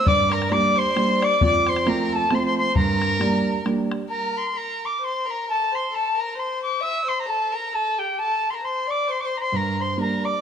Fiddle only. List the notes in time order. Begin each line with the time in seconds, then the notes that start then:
0.05 D5
0.31 A#4
0.50 D5
0.76 C5
1.22 D5
1.41 D5
1.67 C5
1.87 A#4
2.13 A4
2.32 C5
2.45 C5
2.58 C5
2.76 A#4
4.09 A#4
4.55 A#4
5.00 C5
5.26 A#4
5.45 A4
5.72 C5
5.90 A4
6.15 A#4
6.35 C5
6.81 E5
7.05 C5
7.26 A4
7.52 A#4
7.73 A4
7.98 G4
8.13 G4
8.19 A4
8.53 A#4
8.63 C5
8.87 D5
9.08 C5
9.23 C5
9.39 C5
9.55 A#4
9.80 C5
9.99 A#4
10.24 D5